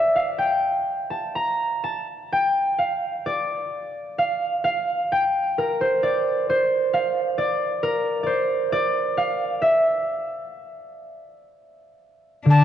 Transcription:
0.00 0.46 C5 medium
0.00 1.27 D5 medium
0.00 0.22 E5 medium
0.16 1.82 F5 medium
0.39 1.94 G5 medium
1.10 1.41 A5 medium
1.35 1.90 A#5 medium
1.84 3.29 A5 medium
2.32 3.88 G5 medium
2.79 2.92 F5 medium
3.26 5.11 D5 medium
4.18 4.64 F5 medium
4.64 6.30 F5 medium
5.12 6.67 G5 medium
5.58 7.70 A#4 medium
5.81 6.49 C5 medium
6.03 7.37 D5 medium
6.49 8.26 C5 medium
6.93 7.06 F5 medium
7.38 8.23 D5 medium
7.83 9.95 A#4 medium
8.23 10.24 C5 medium
8.23 8.72 D5 medium
8.72 10.57 D5 medium
9.17 9.68 F5 medium
9.62 11.45 E5 medium
12.45 12.64 D3 soft
12.45 12.64 D4 medium
12.50 12.64 A5 medium

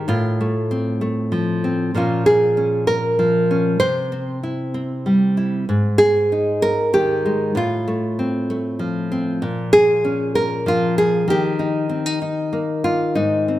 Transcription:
0.08 1.90 A2 medium
0.08 1.94 F4 medium
0.41 1.00 A3 soft
0.71 1.63 C4 soft
1.01 1.90 A3 soft
1.32 1.90 F3 medium
1.64 1.94 C4 soft
1.95 3.80 A#2 medium
1.95 3.18 F3 soft
1.95 3.77 A#3 soft
1.95 2.56 C#4 soft
1.95 2.26 F4 soft
2.26 2.87 G#4 medium
2.57 3.50 C#4 soft
2.87 3.79 A#4 medium
3.19 3.77 F3 medium
3.51 3.77 C#4 soft
3.80 5.64 C3 medium
3.80 5.12 C5 medium
4.12 4.73 C4 soft
4.43 5.36 E4 soft
4.74 5.64 C4 soft
5.06 5.64 G3 medium
5.37 5.64 E4 soft
5.69 7.52 G#2 medium
5.98 6.61 G#4 medium
6.32 6.93 D#4 soft
6.62 7.56 A#4 medium
6.93 7.55 D#3 medium
6.93 7.56 G4 medium
7.25 7.56 G#3 soft
7.55 9.38 A2 medium
7.55 9.43 F4 medium
7.88 8.49 A3 soft
8.19 9.10 C4 soft
8.50 9.39 A3 soft
8.79 10.66 F3 medium
9.12 9.42 C4 soft
9.42 11.27 A#2 medium
9.73 10.34 G#4 loud
10.04 11.24 C#4 soft
10.35 10.66 A#4 loud
10.66 11.24 F3 medium
10.66 10.97 F4 medium
10.98 11.28 G#4 medium
11.28 13.59 D#3 medium
11.28 12.84 G4 medium
11.59 11.89 D#4 soft
11.89 12.06 C4 soft
12.06 12.21 D#4 soft
12.22 13.12 D#4 soft
12.53 13.12 A#3 medium
12.84 13.16 F4 medium
13.15 13.59 G#2 soft
13.15 13.59 D#4 medium
13.48 13.59 C4 soft

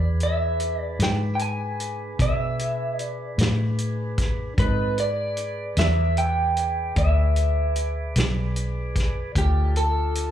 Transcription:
0.00 0.96 E2 medium
0.00 4.54 D4 medium
0.00 4.54 G#4 medium
0.00 4.54 B4 medium
0.20 0.81 E5 medium
0.20 closed hi-hat soft
0.60 closed hi-hat medium
0.81 1.04 D5 medium
0.99 2.15 G#2 medium
0.99 1.11 G5 medium
0.99 snare medium
0.99 closed hi-hat medium
1.35 1.41 G5 medium
1.39 2.21 G#5 medium
1.39 closed hi-hat medium
1.80 closed hi-hat medium
2.19 3.35 B2 medium
2.19 3.00 E5 medium
2.19 kick medium
2.19 closed hi-hat medium
2.59 closed hi-hat medium
2.99 3.36 D5 medium
2.99 closed hi-hat medium
3.38 4.54 A2 medium
3.38 snare medium
3.38 closed hi-hat medium
3.78 closed hi-hat medium
4.18 kick medium
4.18 snare soft
4.18 closed hi-hat medium
4.58 5.74 G#2 medium
4.58 4.98 C4 medium
4.58 4.99 A4 medium
4.58 4.99 B4 medium
4.58 4.98 D#5 medium
4.58 kick medium
4.58 closed hi-hat medium
4.98 9.32 G#4 medium
4.98 9.32 B4 medium
4.98 9.32 D5 medium
4.98 5.81 D5 medium
4.98 closed hi-hat soft
5.37 closed hi-hat medium
5.77 6.93 E2 medium
5.77 6.18 E5 medium
5.77 snare loud
5.77 closed hi-hat medium
6.17 6.98 G5 medium
6.17 closed hi-hat medium
6.57 closed hi-hat medium
6.96 8.12 D2 medium
6.96 8.13 E5 medium
6.96 kick medium
6.96 closed hi-hat medium
7.36 closed hi-hat medium
7.76 closed hi-hat medium
8.16 9.32 B1 medium
8.16 snare loud
8.16 closed hi-hat medium
8.56 closed hi-hat medium
8.96 kick medium
8.96 snare soft
8.96 closed hi-hat medium
9.35 10.31 D2 medium
9.35 10.31 D4 medium
9.35 10.31 F4 medium
9.35 9.77 G4 medium
9.35 10.31 A4 medium
9.35 kick medium
9.35 closed hi-hat medium
9.76 10.31 A4 medium
9.76 closed hi-hat medium
10.15 closed hi-hat medium

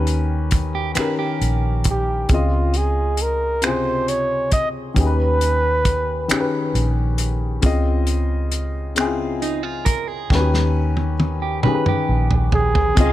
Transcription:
0.00 0.93 D#2 medium
0.00 0.47 D#3 medium
0.00 0.48 C#4 medium
0.00 0.52 G4 medium
0.00 0.50 B4 medium
0.07 closed hi-hat soft
0.51 kick medium
0.51 closed hi-hat medium
0.75 0.95 G4 medium
0.95 1.80 D#3 medium
0.95 1.81 C#4 medium
0.95 1.82 G4 medium
0.95 1.17 B4 medium
0.95 finger snap medium
0.95 muted fingered electric bass stroke soft
0.95 closed hi-hat medium
1.00 1.83 A#4 medium
1.19 2.26 G4 medium
1.41 2.26 A#1 medium
1.41 closed hi-hat soft
1.84 kick medium
1.84 closed hi-hat medium
1.90 2.29 G4 medium
2.28 4.93 C#2 medium
2.28 3.13 C#3 medium
2.28 3.15 C4 medium
2.28 3.15 F4 medium
2.28 kick medium
2.28 closed hi-hat medium
2.34 2.79 F4 medium
2.34 3.16 D#5 medium
2.74 3.23 G#4 medium
2.74 closed hi-hat medium
3.17 closed hi-hat medium
3.22 3.67 A#4 medium
3.62 4.48 C3 medium
3.62 4.47 C#3 medium
3.62 4.49 F4 medium
3.62 4.11 C5 medium
3.62 finger snap medium
3.62 closed hi-hat medium
3.67 4.49 G#4 medium
4.08 4.52 C#5 medium
4.08 closed hi-hat soft
4.51 4.69 D#5 medium
4.51 kick medium
4.51 closed hi-hat medium
4.94 6.26 D#2 medium
4.94 5.80 D#3 medium
4.94 5.81 C#4 medium
4.94 5.81 G4 medium
4.94 6.71 B4 medium
4.94 kick medium
4.94 closed hi-hat medium
5.00 5.05 G#4 medium
5.06 5.86 B4 medium
5.41 closed hi-hat medium
5.85 kick medium
5.85 closed hi-hat medium
6.28 7.13 D#3 medium
6.28 7.15 C#4 medium
6.28 7.15 G4 medium
6.28 finger snap medium
6.28 muted fingered electric bass stroke soft
6.28 closed hi-hat medium
6.34 6.39 G#4 medium
6.40 7.19 B4 medium
6.75 7.60 A#1 medium
6.75 closed hi-hat medium
7.18 closed hi-hat medium
7.62 10.26 C#2 medium
7.62 8.47 C#3 medium
7.62 8.47 C4 medium
7.62 8.48 F4 medium
7.62 kick medium
7.62 closed hi-hat medium
7.66 8.49 D#5 medium
8.07 closed hi-hat medium
8.52 closed hi-hat medium
8.95 9.80 C#3 medium
8.95 9.81 C4 medium
8.95 9.04 E4 soft
8.95 finger snap medium
8.95 closed hi-hat medium
9.00 9.83 G#4 medium
9.05 9.85 F4 medium
9.42 9.63 D#4 medium
9.42 closed hi-hat soft
9.63 9.84 F4 medium
9.85 10.08 A#4 medium
9.85 kick medium
9.85 closed hi-hat medium
10.08 10.50 G#4 medium
10.30 11.60 D#2 medium
10.30 11.14 D#3 medium
10.30 11.15 C#4 medium
10.30 10.38 F#4 medium
10.30 kick medium
10.30 snare soft
10.35 11.17 B4 medium
10.40 11.19 G4 medium
10.54 snare soft
10.97 high tom soft
11.20 high tom medium
11.42 11.63 G4 medium
11.63 12.47 D#3 medium
11.63 12.48 C#4 medium
11.63 12.49 G4 medium
11.63 11.85 B4 medium
11.63 muted fingered electric bass stroke soft
11.63 mid tom medium
11.68 11.72 G#4 medium
11.75 12.53 B4 medium
11.86 12.94 G4 medium
11.86 mid tom medium
12.09 12.93 A#1 medium
12.31 floor tom medium
12.52 13.13 G#4 medium
12.52 floor tom medium
12.75 floor tom medium
12.95 13.13 C#2 loud
12.95 13.13 C#3 medium
12.95 13.13 G#3 medium
12.95 13.13 C4 medium
12.95 13.13 D#4 medium
12.95 13.13 F4 medium
12.95 kick loud
12.95 closed hi-hat medium
13.01 13.13 D#5 medium

